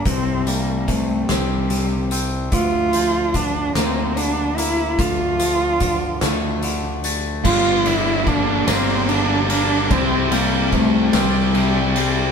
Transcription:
<<
  \new Staff \with { instrumentName = "Cello" } { \time 6/8 \key g \dorian \tempo 4. = 49 c'8 bes8 a8 g4 r8 | f'4 d'8 c'8 d'8 e'8 | f'2 r4 | f'8 e'8 d'8 c'8 d'8 d'8 |
c'8 bes8 a8 g4 r8 | }
  \new Staff \with { instrumentName = "Distorted electric guitar" } { \time 6/8 \key g \dorian r2. | r2. | r2. | <g, d g bes d'>8 <g bes d'>4 <g, d g bes d'>8 <d g bes d'>8 <g bes d'>8 |
<c g c' e'>8 <g c' e'>4 <c g c' e'>8 <c g c' e'>8 <g c' e'>8 | }
  \new Staff \with { instrumentName = "Clean electric guitar" } { \clef bass \time 6/8 \key g \dorian c8 g8 c8 c'8 c8 c'8 | d8 f8 d8 bes8 d8 bes8 | d8 f8 d8 a8 d8 a8 | g,8 d8 d8 bes8 d8 bes8 |
c8 g8 c8 c'8 c8 c'8 | }
  \new Staff \with { instrumentName = "Fingered electric bass" } { \clef bass \time 6/8 \key g \dorian c,4. c,4. | d,4. d,4. | d,4. d,4. | g,,4. g,,4. |
c,4. c,4. | }
  \new DrumStaff \with { instrumentName = "Drums" } \drummode { \time 6/8 <hh bd>8 hh8 <hh bd>8 <hh sn>8 hh8 hh8 | <hh bd>8 hh8 <hh bd>8 <hh sn>8 hh8 hh8 | <hh bd>8 hh8 <hh bd>8 <hh sn>8 hh8 hh8 | <cymc bd>8 cymr8 <bd cymr>8 <cymr sn>8 cymr8 cymr8 |
<bd cymr>8 cymr8 <bd cymr>8 <cymr sn>8 cymr8 cymr8 | }
>>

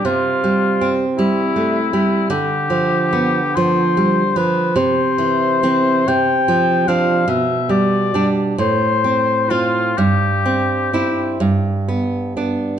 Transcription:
<<
  \new Staff \with { instrumentName = "Oboe" } { \time 6/8 \key c \major \tempo 4. = 47 f'4 r8 e'4. | g'4. c''4 b'8 | c''4. g''4 f''8 | e''8 d''8 r8 c''4 f'8 |
g'4. r4. | }
  \new Staff \with { instrumentName = "Nylon-string guitar" } { \clef bass \time 6/8 \key c \major c8 g8 c'8 g8 a8 g8 | d8 f8 b8 f8 g8 f8 | c8 e8 <e c'>8 c8 f8 <f d'>8 | b,8 g8 <g d'>8 a,8 c'8 <c' f'>8 |
g,8 c'8 <c' e'>8 g,8 b8 <b d'>8 | }
>>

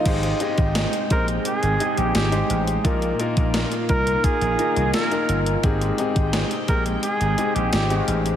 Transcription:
<<
  \new Staff \with { instrumentName = "Flugelhorn" } { \time 4/4 \key aes \major \tempo 4 = 86 r4. bes'8 aes'8. g'16 g'8. r16 | r4. bes'8 aes'4 bes'8. r16 | r4. bes'8 aes'8. g'16 g'8. r16 | }
  \new Staff \with { instrumentName = "Grand piano" } { \time 4/4 \key aes \major <ees' g' aes' c''>8 <ees' g' aes' ees''>4 <ees' g' aes' c''>4 <ees' g' aes' ees''>8. <aes ees' g' c''>8. | <bes ees' f' bes'>8 <bes ees' f' bes'>4 <bes ees' f' bes'>4 <bes ees' f' bes'>8. <bes ees' f' bes'>8. | <c' ees' g' aes'>8 <c' ees' g' aes'>4 <c' ees' g' aes'>4 <c' ees' g' aes'>8. <aes c' ees' g'>8. | }
  \new Staff \with { instrumentName = "Grand piano" } { \clef bass \time 4/4 \key aes \major aes,4. r2 r8 | bes,4. r2 r8 | aes,4. r2 r8 | }
  \new Staff \with { instrumentName = "String machine" } { \time 4/4 \key aes \major <aes c' g''>1 | <bes ees' f'>1 | <aes c' g''>1 | }
  \new Staff \with { instrumentName = "Slap bass" } { \clef bass \time 4/4 \key aes \major aes,,8 r16 aes,,8 r16 bes,,8 r16 aes,,16 r16 bes,,16 aes,,8 a,,8 | bes,,8 r16 bes,,8 r16 c,8 r16 bes,,16 r16 c,16 r8 g,,8 | aes,,8 r16 aes,,8 r16 bes,,8 r16 aes,,16 r16 bes,,16 aes,,8 a,,8 | }
  \new DrumStaff \with { instrumentName = "Drums" } \drummode { \time 4/4 <cymc hh bd>16 hh16 hh16 <hh bd>16 <hh sn>16 hh16 <hh bd>16 hh16 hh16 hh16 hh16 hh16 <hh sn>16 hh16 hh16 hh16 | <hh bd>16 hh16 hh16 <hh bd>16 <hh sn>16 hh16 <hh bd>16 hh16 <hh bd>16 hh16 hh16 hh16 <hh sn>16 hh16 hh16 hh16 | <hh bd>16 hh16 hh16 <hh bd>16 <hh sn>16 hh16 <hh bd>16 hh16 hh16 hh16 hh16 hh16 <hh sn>16 hh16 hh16 hh16 | }
>>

